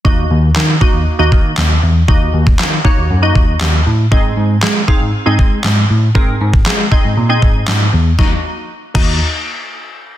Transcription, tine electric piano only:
\new Staff \with { instrumentName = "Tine electric piano" } { \clef bass \time 4/4 \key ees \dorian \tempo 4 = 118 ees,8 ees,8 ees8 r16 ees,16 r16 ees,16 ees8 ees,8 fes,8 | ees,8 ees,8 ees8 r16 ees,16 ges,8 ees,8 ees,8 a,8 | aes,8 aes,8 aes8 r16 aes,16 r16 aes,16 aes8 aes,8 a,8 | aes,8 aes,8 aes8 r16 aes,16 bes,8 aes,8 aes,8 fes,8 |
ees,16 r4 r16 ees,8 r2 | }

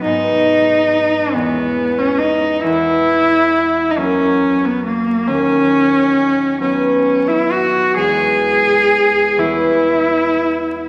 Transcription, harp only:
\new Staff \with { instrumentName = "Harp" } { \clef bass \time 6/8 \key b \major \tempo 4. = 45 <gis, gis b dis'>4. <e, gis b cis'>4. | e,4. <fis ais cis'>4. | dis,4. <fis b>4. | <e, gis b cis'>4. <e, g b cis'>4. | }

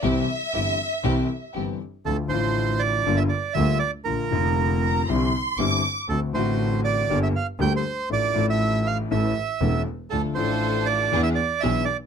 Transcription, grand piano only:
\new Staff \with { instrumentName = "Grand piano" } { \clef bass \time 4/4 \key c \mixolydian \tempo 4 = 119 <c, c e g c' g'>8 r8 <g,, g, e g c' g'>8 r8 <c, c e g c' g'>8 r8 <g,, g, e g c' g'>8 r8 | \key d \minor <d, d f a f'>8 <a,, a, d f a f'>4. <g,, g, d g bes f'>8 r8 <d, d g bes f'>8 r8 | <bes,, bes, d f bes f'>8 <f,, f, d f bes f'>4. <c, c d g c' e'>8 r8 <g,, g, d g c' e'>8 r8 | <d, d a c' fis'>8 <a,, a, d a c' fis'>4. <g,, g, d g bes g'>8 r8 <d, d g bes g'>8 r8 |
<a,, a, f a d' a'>8 <a,, a, f a d' a'>4. <a,, a, e a cis' a'>8 r8 <e,, e, e a cis' a'>8 r8 | <d, d f a d' a'>8 <a,, a, f a d' a'>4. <e, e b d' gis'>8 r8 <b,, b, e b d' gis'>8 r8 | }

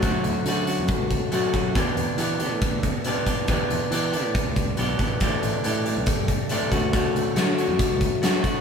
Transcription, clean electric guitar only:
\new Staff \with { instrumentName = "Clean electric guitar" } { \time 4/4 \key d \major \tempo 4 = 139 <fis a cis' fis'>4 <fis a cis' fis'>8 <a cis' fis'>4. <fis a cis' fis'>8 <a cis' fis'>8 | <e b d' g'>4 <e b d' g'>8 <b d' g'>4. <e b d' g'>8 <b d' g'>8 | <e b d' g'>4 <e b d' g'>8 <b d' g'>4. <e b d' g'>8 <b d' g'>8 | <e a d' g'>4 <e a d' g'>8 <a d' g'>4. <e a d' g'>8 <a cis' fis'>8 |
<a cis' fis'>4 <a cis' fis'>8 <cis' fis'>4. <a cis' fis'>8 <cis' fis'>8 | }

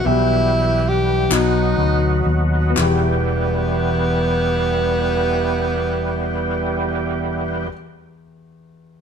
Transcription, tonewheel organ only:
\new Staff \with { instrumentName = "Tonewheel organ" } { \time 6/8 \key e \minor \tempo 4. = 38 <e g b g'>4. <fis b dis' fis'>4. | <e g b g'>2.~ | <e g b g'>2. | }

